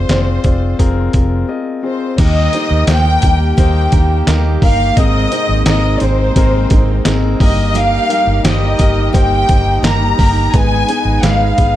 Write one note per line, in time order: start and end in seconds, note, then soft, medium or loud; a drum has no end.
0.00 0.09 C4 medium
0.00 0.09 F4 medium
0.00 0.09 G#4 medium
0.00 1.48 C5 medium
0.00 1.84 C5 medium
0.00 0.10 D5 medium
0.09 0.38 F1 medium
0.09 0.38 C4 medium
0.09 0.38 F4 medium
0.09 0.38 G#4 medium
0.09 0.38 D5 medium
0.09 snare medium
0.09 clap medium
0.09 closed hi-hat medium
0.44 0.73 F1 medium
0.44 0.73 C4 medium
0.44 0.73 F4 medium
0.44 0.73 G#4 medium
0.44 0.73 D5 medium
0.44 kick medium
0.44 closed hi-hat medium
0.79 1.08 F1 medium
0.79 1.07 C4 medium
0.79 1.07 F4 medium
0.79 1.07 G#4 medium
0.79 1.07 A#4 loud
0.79 kick medium
0.79 closed hi-hat medium
1.13 1.43 F1 medium
1.13 1.42 C4 medium
1.13 1.42 F4 medium
1.13 1.42 G#4 medium
1.13 1.42 A#4 medium
1.13 kick medium
1.13 closed hi-hat medium
1.48 1.77 C4 medium
1.48 1.77 F4 medium
1.48 1.77 G#4 medium
1.48 1.77 D#5 medium
1.83 2.11 C4 medium
1.83 2.11 F4 medium
1.83 2.12 G#4 medium
1.83 2.12 C5 medium
1.83 2.17 C5 medium
2.18 2.47 D#2 medium
2.18 3.19 D#3 medium
2.18 2.54 D#3 medium
2.18 4.94 D#3 medium
2.18 4.94 G3 medium
2.18 2.46 A#3 medium
2.18 10.50 A#3 medium
2.18 2.46 D#4 medium
2.18 2.54 D#4 medium
2.18 2.47 G4 medium
2.18 4.94 G4 medium
2.18 2.54 G4 medium
2.18 2.47 A#4 loud
2.18 2.52 A#4 medium
2.18 2.85 D#5 loud
2.18 kick loud
2.18 closed hi-hat medium
2.18 crash medium
2.53 2.81 A#3 medium
2.53 2.81 D#4 medium
2.53 2.88 D#4 soft
2.53 2.82 G4 medium
2.53 2.89 G4 medium
2.53 2.88 A#4 medium
2.53 2.82 C5 medium
2.53 closed hi-hat medium
2.71 2.85 D#2 medium
2.87 3.16 D#2 loud
2.87 3.23 D#3 medium
2.87 3.16 A#3 medium
2.87 3.17 D#4 medium
2.87 3.23 D#4 medium
2.87 3.17 G4 medium
2.87 3.23 G4 medium
2.87 3.22 A#4 medium
2.87 3.17 C5 medium
2.87 snare loud
2.87 clap medium
2.87 closed hi-hat medium
2.91 3.59 G5 loud
3.22 3.51 D#2 medium
3.22 3.51 A#3 medium
3.22 3.52 D#4 medium
3.22 3.52 G4 medium
3.22 3.58 G4 soft
3.22 3.58 A#4 medium
3.22 3.52 A#4 medium
3.22 kick medium
3.22 closed hi-hat medium
3.26 3.57 D#4 soft
3.57 3.86 D#2 loud
3.57 3.92 D#3 medium
3.57 3.86 A#3 medium
3.57 3.92 D#4 medium
3.57 3.86 D#4 medium
3.57 3.86 G4 medium
3.57 3.93 G4 medium
3.57 3.91 A#4 medium
3.57 3.86 C5 loud
3.57 4.24 G5 loud
3.57 kick medium
3.57 closed hi-hat medium
3.92 4.21 D#2 medium
3.92 4.21 A#3 medium
3.92 4.21 D#4 medium
3.92 4.27 D#4 soft
3.92 4.21 G4 medium
3.92 4.27 G4 medium
3.92 4.27 A#4 medium
3.92 4.21 A#4 medium
3.92 kick loud
3.92 closed hi-hat medium
4.27 4.56 D#2 medium
4.27 4.62 D#3 medium
4.27 4.55 A#3 medium
4.27 4.55 D#4 medium
4.27 4.63 D#4 medium
4.27 4.55 G4 medium
4.27 4.63 G4 medium
4.27 4.56 A#4 medium
4.27 4.61 A#4 medium
4.27 snare loud
4.27 clap medium
4.27 closed hi-hat medium
4.62 4.90 G1 medium
4.62 4.90 A#3 medium
4.62 4.90 D#4 medium
4.62 4.97 D#4 soft
4.62 4.91 G4 medium
4.62 4.98 G4 medium
4.62 4.97 A#4 medium
4.62 4.91 A#4 medium
4.62 4.95 F5 loud
4.62 kick loud
4.62 open hi-hat medium
4.96 5.25 G#1 loud
4.96 5.98 G#2 medium
4.96 7.39 C3 medium
4.96 5.32 G#3 medium
4.96 7.39 G#3 medium
4.96 5.25 C4 loud
4.96 5.32 C4 medium
4.96 5.25 D#4 medium
4.96 7.38 D#4 medium
4.96 5.32 D#4 medium
4.96 5.26 G#4 medium
4.96 5.26 A#4 medium
4.96 5.30 A#4 medium
4.96 5.66 D#5 loud
4.96 kick loud
4.96 closed hi-hat medium
5.31 5.60 C4 medium
5.31 5.66 C4 soft
5.31 5.60 D#4 medium
5.31 5.66 D#4 soft
5.31 5.60 G#4 medium
5.31 5.66 A#4 medium
5.31 5.60 C5 medium
5.31 closed hi-hat medium
5.49 5.63 G#1 loud
5.66 5.95 G#1 loud
5.66 6.01 G#3 medium
5.66 5.94 C4 medium
5.66 6.02 C4 medium
5.66 5.94 D#4 medium
5.66 6.01 D#4 medium
5.66 5.94 G#4 medium
5.66 5.95 A#4 medium
5.66 6.00 A#4 loud
5.66 5.99 D#5 loud
5.66 snare loud
5.66 clap medium
5.66 closed hi-hat medium
6.00 6.30 G#1 medium
6.00 6.29 C4 medium
6.00 6.36 C4 medium
6.00 6.29 D#4 medium
6.00 6.30 G#4 medium
6.00 6.36 A#4 medium
6.00 6.30 C5 medium
6.00 7.06 C5 medium
6.00 closed hi-hat medium
6.04 6.35 D#4 medium
6.36 6.64 G#1 loud
6.36 6.71 G#3 medium
6.36 6.64 C4 medium
6.36 6.71 C4 medium
6.36 6.64 D#4 medium
6.36 6.71 D#4 medium
6.36 6.64 G#4 medium
6.36 6.65 A#4 loud
6.36 6.69 A#4 medium
6.36 kick medium
6.36 closed hi-hat medium
6.70 6.99 G#1 medium
6.70 6.99 C4 medium
6.70 7.06 C4 medium
6.70 6.99 D#4 medium
6.70 7.05 D#4 medium
6.70 6.99 G#4 medium
6.70 7.05 A#4 medium
6.70 6.99 A#4 medium
6.70 kick loud
6.70 closed hi-hat medium
7.05 7.34 G#1 medium
7.05 7.40 G#3 medium
7.05 7.33 C4 medium
7.05 7.41 C4 medium
7.05 7.33 D#4 medium
7.05 7.41 D#4 medium
7.05 7.34 G#4 medium
7.05 7.34 A#4 medium
7.05 7.39 A#4 medium
7.05 snare loud
7.05 clap medium
7.05 closed hi-hat medium
7.40 7.97 G1 medium
7.40 8.41 G2 medium
7.40 10.51 G3 medium
7.40 7.96 A#3 medium
7.40 7.96 D#4 medium
7.40 11.76 D#4 medium
7.40 7.74 D#4 soft
7.40 7.97 G4 medium
7.40 10.51 G4 medium
7.40 7.74 G4 medium
7.40 7.75 A#4 medium
7.40 7.97 A#4 medium
7.40 7.73 D#5 loud
7.40 kick loud
7.40 open hi-hat medium
7.74 8.09 G3 medium
7.74 8.10 D#4 medium
7.74 8.09 G4 loud
7.74 8.08 A#4 medium
7.74 8.45 F5 loud
7.74 closed hi-hat medium
8.09 8.38 A#3 medium
8.09 8.38 D#4 medium
8.09 8.43 D#4 soft
8.09 8.38 G4 medium
8.09 8.44 G4 medium
8.09 8.44 A#4 medium
8.09 8.38 A#4 medium
8.09 closed hi-hat medium
8.27 8.41 G1 medium
8.44 8.73 G1 medium
8.44 8.79 G3 medium
8.44 8.73 A#3 medium
8.44 8.79 D#4 medium
8.44 8.73 D#4 medium
8.44 8.79 G4 loud
8.44 8.73 G4 medium
8.44 8.77 A#4 loud
8.44 8.73 C5 medium
8.44 9.11 D#5 medium
8.44 snare loud
8.44 clap medium
8.44 closed hi-hat loud
8.79 9.08 G1 loud
8.79 9.08 A#3 medium
8.79 9.08 D#4 medium
8.79 9.13 D#4 soft
8.79 9.14 G4 medium
8.79 9.08 G4 medium
8.79 9.14 A#4 medium
8.79 9.08 A#4 medium
8.79 kick medium
8.79 closed hi-hat medium
9.13 9.43 G1 medium
9.13 9.48 G3 medium
9.13 9.42 A#3 medium
9.13 9.49 D#4 medium
9.13 9.42 D#4 medium
9.13 9.43 G4 medium
9.13 9.49 G4 medium
9.13 9.47 A#4 medium
9.13 9.43 C5 loud
9.13 9.80 G5 loud
9.13 kick medium
9.13 closed hi-hat medium
9.48 9.78 G1 medium
9.48 9.77 A#3 medium
9.48 9.78 D#4 medium
9.48 9.83 D#4 soft
9.48 9.78 G4 medium
9.48 9.83 G4 medium
9.48 9.83 A#4 medium
9.48 9.78 C5 medium
9.48 kick loud
9.48 closed hi-hat medium
9.83 10.12 G1 medium
9.83 10.18 G3 medium
9.83 10.12 A#3 medium
9.83 10.19 D#4 medium
9.83 10.12 D#4 medium
9.83 10.19 G4 medium
9.83 10.12 G4 medium
9.83 10.12 A#4 medium
9.83 10.17 A#4 loud
9.83 10.54 A#5 loud
9.83 snare loud
9.83 clap loud
9.83 closed hi-hat medium
10.18 10.47 G1 medium
10.18 10.47 A#3 medium
10.18 10.47 D#4 medium
10.18 10.53 D#4 medium
10.18 10.47 G4 medium
10.18 10.54 G4 medium
10.18 10.53 A#4 medium
10.18 10.47 A#4 medium
10.18 kick medium
10.18 open hi-hat medium
10.53 10.82 G#1 loud
10.53 11.55 G#2 medium
10.53 11.76 G#3 medium
10.53 10.89 G#3 medium
10.53 11.76 B3 medium
10.53 10.82 B3 medium
10.53 10.82 D#4 medium
10.53 10.89 D#4 medium
10.53 11.76 G#4 medium
10.53 10.82 G#4 medium
10.53 10.88 G#4 medium
10.53 10.82 B4 loud
10.53 10.87 B4 loud
10.53 11.24 G#5 loud
10.53 kick loud
10.53 closed hi-hat medium
10.88 11.17 B3 medium
10.88 11.17 D#4 medium
10.88 11.23 D#4 medium
10.88 11.17 G#4 medium
10.88 11.24 G#4 medium
10.88 11.23 B4 medium
10.88 11.17 B4 medium
10.88 closed hi-hat medium
11.05 11.20 G#1 medium
11.22 11.51 G#1 loud
11.22 11.58 G#3 medium
11.22 11.51 B3 medium
11.22 11.52 D#4 medium
11.22 11.59 D#4 medium
11.22 11.52 G#4 medium
11.22 11.59 G#4 medium
11.22 11.52 B4 medium
11.22 11.57 B4 medium
11.22 11.76 F5 medium
11.22 snare loud
11.22 clap medium
11.22 closed hi-hat medium
11.58 11.76 G#1 medium
11.58 11.76 B3 medium
11.58 11.76 D#4 medium
11.58 11.76 D#4 soft
11.58 11.76 G#4 medium
11.58 11.76 B4 medium
11.58 kick medium
11.58 closed hi-hat medium